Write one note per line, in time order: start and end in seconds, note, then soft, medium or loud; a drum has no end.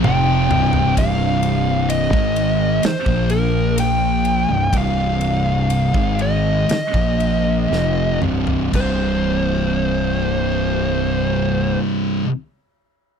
0.04 0.49 F1 loud
0.04 0.49 F2 loud
0.04 0.50 C3 loud
0.04 0.51 F3 loud
0.04 0.93 G5 loud
0.04 mid tom medium
0.51 0.95 C1 medium
0.51 0.95 C2 medium
0.51 0.96 G2 loud
0.51 0.97 C3 loud
0.51 floor tom loud
0.73 floor tom loud
0.96 2.09 C1 medium
0.96 2.11 C2 loud
0.96 2.12 G2 loud
0.96 2.12 C3 loud
0.96 1.86 F5 loud
0.96 kick loud
0.96 ride medium
1.43 ride medium
1.90 2.86 D#5 loud
1.90 ride medium
2.12 2.79 G#1 medium
2.12 2.81 G#2 medium
2.12 2.81 D#3 medium
2.12 2.81 G#3 medium
2.12 kick loud
2.36 ride medium
2.81 muted distorted electric guitar stroke medium
2.81 muted fingered electric bass stroke soft
2.81 snare loud
2.81 ride medium
2.86 3.28 C5 loud
3.06 4.45 A#1 loud
3.06 4.47 A#2 medium
3.06 4.48 F3 loud
3.06 4.48 A#3 loud
3.06 kick loud
3.30 3.74 A#4 medium
3.30 ride medium
3.78 4.77 G5 medium
3.78 snare soft
3.78 ride loud
4.25 ride medium
4.49 4.72 C1 medium
4.49 4.71 C2 medium
4.49 4.71 G2 medium
4.72 5.90 C1 medium
4.72 5.93 C2 loud
4.72 5.93 G2 loud
4.72 5.94 C3 loud
4.72 kick loud
4.72 ride medium
4.78 6.26 F5 medium
5.21 ride medium
5.70 ride medium
5.93 6.65 G#1 medium
5.93 6.67 G#2 medium
5.93 6.67 D#3 medium
5.93 6.68 G#3 medium
5.93 kick loud
6.19 8.19 D#5 medium
6.19 ride medium
6.69 muted fingered electric bass stroke soft
6.69 muted distorted electric guitar stroke medium
6.69 snare loud
6.69 ride medium
6.94 7.66 A#1 loud
6.94 7.69 A#2 medium
6.94 7.69 F3 medium
6.94 7.69 A#3 loud
6.94 kick loud
7.20 ride medium
7.70 8.18 F1 medium
7.70 8.20 F2 medium
7.70 8.21 C3 medium
7.70 8.21 F3 medium
7.70 snare medium
8.22 8.71 C1 medium
8.22 8.73 C2 medium
8.22 8.73 G2 medium
8.22 8.74 C3 medium
8.22 mid tom medium
8.47 floor tom medium
8.73 11.76 C1 medium
8.73 12.25 C2 medium
8.73 12.27 G2 loud
8.73 11.78 C5 medium
8.73 kick medium
8.73 crash medium
8.79 12.29 C3 loud